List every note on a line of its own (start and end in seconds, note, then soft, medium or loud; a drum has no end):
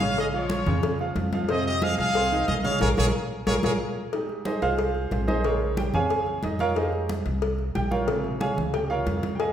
0.00 0.61 A#1 medium
0.00 0.28 C#3 medium
0.00 0.28 C#4 loud
0.00 0.16 G#4 medium
0.00 0.29 C#5 medium
0.00 0.17 F5 loud
0.00 high conga medium
0.17 0.27 G#4 medium
0.17 0.27 D#5 medium
0.17 cowbell loud
0.17 high conga soft
0.33 0.61 F3 medium
0.33 0.61 F4 medium
0.33 0.97 F4 medium
0.33 0.97 C#5 loud
0.33 0.61 F5 medium
0.33 high conga soft
0.50 cowbell medium
0.50 high conga loud
0.66 1.13 F2 loud
0.66 0.94 C#3 medium
0.66 0.94 C#4 loud
0.66 0.94 C#5 medium
0.66 high conga soft
0.66 low conga medium
0.83 cowbell loud
0.83 high conga soft
0.83 low conga medium
0.99 1.27 F3 medium
0.99 1.27 F4 medium
0.99 1.28 F5 medium
0.99 high conga soft
1.16 1.93 F2 loud
1.16 cowbell medium
1.16 high conga medium
1.33 1.47 F3 medium
1.33 1.47 F4 medium
1.33 1.47 F5 medium
1.33 cowbell medium
1.33 high conga loud
1.49 1.77 C3 medium
1.49 1.77 C4 medium
1.49 1.65 G#4 medium
1.49 1.77 C5 medium
1.49 1.65 D#5 loud
1.49 cowbell loud
1.49 high conga soft
1.66 1.82 G4 medium
1.66 1.81 D#5 loud
1.66 high conga soft
1.82 2.10 F3 medium
1.82 2.10 F4 medium
1.82 1.99 G#4 loud
1.82 1.97 F5 loud
1.82 2.10 F5 medium
1.82 cowbell medium
1.82 high conga loud
1.99 2.45 C2 loud
1.99 2.45 G#4 loud
1.99 2.45 F5 loud
1.99 cowbell medium
1.99 high conga soft
2.15 2.29 C4 medium
2.15 2.29 C5 medium
2.15 2.30 C6 medium
2.15 cowbell loud
2.15 high conga soft
2.32 2.59 D#3 medium
2.32 2.59 D#4 medium
2.32 2.59 D#5 medium
2.32 high conga soft
2.48 2.79 A#1 medium
2.48 2.57 G#4 medium
2.48 2.55 D#5 loud
2.48 cowbell medium
2.48 high conga medium
2.64 2.78 C#3 medium
2.64 2.78 C#4 loud
2.64 2.80 G#4 medium
2.64 2.78 C#5 medium
2.64 2.80 F5 loud
2.64 high conga medium
2.81 2.93 A#1 loud
2.81 2.92 F4 medium
2.81 2.92 G#4 loud
2.81 2.89 G#4 loud
2.81 2.92 A#4 medium
2.81 2.90 A#4 loud
2.81 2.89 C#5 loud
2.81 cowbell loud
2.81 high conga loud
2.97 3.10 A#1 loud
2.97 3.08 F4 medium
2.97 3.08 G#4 loud
2.97 3.06 G#4 loud
2.97 3.08 A#4 medium
2.97 3.06 A#4 loud
2.97 3.06 C#5 loud
2.97 cowbell loud
2.97 high conga loud
3.47 3.59 A#1 loud
3.47 3.58 F4 medium
3.47 3.55 G#4 loud
3.47 3.58 G#4 medium
3.47 3.58 A#4 loud
3.47 3.55 A#4 medium
3.47 3.55 C#5 loud
3.47 cowbell loud
3.47 high conga loud
3.63 3.76 A#1 loud
3.63 3.74 F4 loud
3.63 3.74 G#4 medium
3.63 3.72 G#4 loud
3.63 3.74 A#4 loud
3.63 3.72 A#4 loud
3.63 3.72 C#5 medium
3.63 cowbell medium
3.63 high conga loud
4.13 5.41 G#3 soft
4.13 4.45 D#4 medium
4.13 5.40 G4 medium
4.13 cowbell loud
4.13 high conga soft
4.29 high conga soft
4.45 4.62 D#4 medium
4.45 4.61 G#4 medium
4.45 4.61 C5 medium
4.45 4.62 D#5 medium
4.45 cowbell medium
4.45 high conga medium
4.62 5.08 C2 medium
4.62 5.08 F4 medium
4.62 5.08 G#4 medium
4.62 5.08 C5 medium
4.62 5.08 F5 loud
4.62 cowbell medium
4.62 high conga soft
4.78 cowbell loud
4.78 high conga soft
4.95 high conga soft
5.11 5.88 A#1 medium
5.11 5.28 C4 soft
5.11 5.28 F4 soft
5.11 5.26 G#4 soft
5.11 5.26 C5 medium
5.11 cowbell medium
5.11 high conga medium
5.28 5.44 D#4 medium
5.28 5.44 G#4 medium
5.28 5.39 C5 medium
5.28 5.44 D#5 medium
5.28 high conga medium
5.40 5.91 C#3 soft
5.40 5.43 C5 medium
5.40 cowbell loud
5.45 5.91 G#3 soft
5.45 5.75 C#4 medium
5.45 5.76 G#4 medium
5.45 5.75 A#4 medium
5.45 5.92 C5 medium
5.45 5.75 C#5 medium
5.45 high conga soft
5.61 high conga soft
5.77 5.94 G4 medium
5.77 5.93 G5 medium
5.77 cowbell medium
5.77 high conga medium
5.94 6.40 F2 medium
5.94 6.09 C#3 soft
5.94 6.09 G#3 soft
5.94 6.09 C4 medium
5.94 6.40 G#4 medium
5.94 6.40 C#5 medium
5.94 6.40 F5 medium
5.94 6.40 G#5 loud
5.94 high conga soft
5.94 low conga medium
6.10 cowbell loud
6.10 high conga soft
6.26 high conga soft
6.43 7.20 F2 medium
6.43 6.60 D#4 medium
6.43 6.60 D#5 medium
6.43 cowbell medium
6.43 high conga medium
6.59 6.76 F4 medium
6.59 6.76 A#4 medium
6.59 6.76 C#5 medium
6.59 6.76 F5 loud
6.59 cowbell medium
6.59 high conga medium
6.76 7.23 G#3 soft
6.76 7.24 D#4 medium
6.76 7.23 G4 medium
6.76 7.07 G#4 medium
6.76 7.07 C5 medium
6.76 7.07 D#5 medium
6.76 cowbell loud
6.76 high conga soft
6.93 high conga soft
7.09 cowbell medium
7.09 high conga loud
7.26 7.72 C2 loud
7.26 cowbell medium
7.26 high conga soft
7.42 cowbell loud
7.42 high conga soft
7.59 high conga soft
7.75 8.52 A#1 medium
7.75 7.91 G4 medium
7.75 7.91 G5 medium
7.75 cowbell medium
7.75 high conga loud
7.91 8.37 F4 medium
7.91 8.37 A#4 medium
7.91 8.37 C#5 medium
7.91 8.37 F5 medium
7.91 high conga loud
8.07 9.36 C3 medium
8.07 9.35 C#3 medium
8.07 9.36 G#3 medium
8.07 cowbell loud
8.07 high conga soft
8.24 high conga soft
8.41 8.57 G#4 medium
8.41 8.57 C#5 medium
8.41 8.57 F5 medium
8.41 8.57 G#5 medium
8.41 cowbell medium
8.41 high conga loud
8.57 9.03 C#2 medium
8.57 high conga soft
8.57 low conga medium
8.74 8.90 G4 medium
8.74 8.90 G5 medium
8.74 cowbell loud
8.74 high conga soft
8.90 9.36 F4 medium
8.90 9.36 A#4 medium
8.90 9.36 C#5 medium
8.90 9.36 F5 medium
8.90 high conga soft
9.06 9.53 F2 medium
9.06 cowbell medium
9.06 high conga medium
9.23 cowbell medium
9.23 high conga medium
9.35 9.38 G5 soft
9.40 9.53 G#4 medium
9.40 9.53 D#5 medium
9.40 9.53 F5 medium
9.40 9.53 G#5 medium
9.40 cowbell loud
9.40 high conga soft